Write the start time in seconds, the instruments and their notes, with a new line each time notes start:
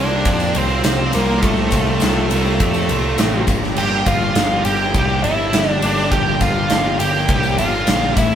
Already playing: picked electric bass C2, clean electric guitar C3, overdriven electric guitar C3 F3 A#3, lead electric guitar D4, string machine F4 C5 A#5
0.10 clean electric guitar A#3 F4 G4
0.25 picked electric bass F2, overdriven electric guitar G4, kick, ride
0.40 clean electric guitar A#3 F4 G4, tambourine
0.55 picked electric bass C2, clean electric guitar F3 A#3 F4 G4, lead electric guitar C4, ride
0.70 tambourine
0.83 picked electric bass C2, clean electric guitar C3 F3 A#3 F4 G4, snare, ride, tambourine
1.12 picked electric bass C2, clean electric guitar F3 A#3 F4 G4, lead electric guitar A#3, ride, tambourine
1.28 clean electric guitar A#3 F4 G4
1.42 picked electric bass C2, clean electric guitar C3 F3 A#3 F4 G4, lead electric guitar A3, kick, ride, tambourine
1.57 tambourine
1.71 picked electric bass C2, overdriven electric guitar F3, kick, ride, tambourine
1.86 clean electric guitar A#3 F4 G4
2.00 picked electric bass C2, clean electric guitar C3 F3 A#3 F4 G4, snare, ride, tambourine
2.30 picked electric bass C2, overdriven electric guitar A#3, muted clean electric guitar stroke, ride, tambourine
2.44 clean electric guitar A#3 F4 G4, tambourine
2.59 picked electric bass F2, overdriven electric guitar G4, kick, ride, tambourine
2.73 clean electric guitar A#3 F4 G4, tambourine
2.89 picked electric bass C2, clean electric guitar F3 A#3 F4 G4, ride
3.03 muted clean electric guitar stroke, tambourine
3.18 picked electric bass A1, clean electric guitar C3 F3 A#3 F4 G4, snare, ride, tambourine
3.32 tambourine
3.47 picked electric bass G1, clean electric guitar G2 D3 F3 A#3 D4 G4, string machine G4 G5, kick, ride, tambourine
3.62 clean electric guitar F3 A#3 D4 G4, snare, tambourine
3.76 picked electric bass G1, clean electric guitar G2 D3 F3 A#3 D4 G4, lead electric guitar G4, crash, tambourine
3.92 tambourine
4.05 picked electric bass G1, overdriven electric guitar D3, lead electric guitar F4, kick, ride, tambourine
4.21 clean electric guitar F3 A#3 D4 G4, tambourine
4.35 picked electric bass G1, clean electric guitar G2 D3 F3 A#3 D4 G4, snare, ride, tambourine
4.65 picked electric bass G1, overdriven electric guitar A#3, lead electric guitar G4, muted clean electric guitar stroke, ride, tambourine
4.80 clean electric guitar F3 A#3 D4 G4
4.94 picked electric bass C2, overdriven electric guitar G4, kick, ride
5.08 clean electric guitar F3 A#3 D4 G4
5.23 picked electric bass G1, clean electric guitar F3 A#3 D4 G4, lead electric guitar E4, ride, tambourine
5.38 muted clean electric guitar stroke, tambourine
5.53 picked electric bass G1, clean electric guitar G2 D3 F3 A#3 D4 G4, snare, ride, tambourine
5.69 lead electric guitar D4, tambourine
5.82 picked electric bass G1, clean electric guitar F3 A#3 D4 G4, lead electric guitar D4, ride, tambourine
5.96 clean electric guitar F3 A#3 D4 G4, snare
6.11 picked electric bass G1, clean electric guitar G2 D3 F3 A#3 D4 G4, lead electric guitar G4, kick, ride, tambourine
6.28 tambourine
6.41 picked electric bass G1, overdriven electric guitar D3, lead electric guitar F4, kick, ride, tambourine
6.55 clean electric guitar F3 A#3 D4 G4
6.70 picked electric bass G1, clean electric guitar G2 D3 F3 A#3 D4 G4, snare, ride, tambourine
6.85 tambourine
6.99 picked electric bass G1, overdriven electric guitar A#3, lead electric guitar G4, muted clean electric guitar stroke, ride, tambourine
7.15 clean electric guitar F3 A#3 D4 G4
7.28 picked electric bass C2, overdriven electric guitar G4, kick, ride
7.43 clean electric guitar F3 A#3 D4 G4, tambourine
7.58 picked electric bass G1, clean electric guitar F3 A#3 D4 G4, lead electric guitar F4, ride
7.73 muted clean electric guitar stroke, tambourine
7.87 picked electric bass A#1, clean electric guitar G2 D3 F3 A#3 D4 G4, snare, ride, tambourine
8.02 tambourine
8.17 picked electric bass A1, clean electric guitar A2 E3 G3 C4 E4 A4, lead electric guitar E4, string machine A4 G5 C6, kick, ride, tambourine
8.31 clean electric guitar E4 A4